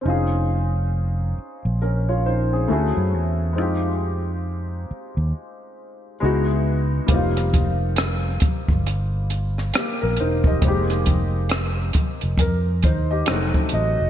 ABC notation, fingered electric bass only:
X:1
M:4/4
L:1/16
Q:"Swing 16ths" 1/4=68
K:Fm
V:1 name="Fingered electric bass" clef=bass
F,,,6 z B,,,4- B,,, =D,, ^F,, =E,,2 | F,,6 z E,, z4 D,,4 | F,,,6 z G,,,4- G,,, z B,,, =E,,,2 | F,,,6 z F,,, F,,2 E,,2 F,,, z =A,,, F,,, |]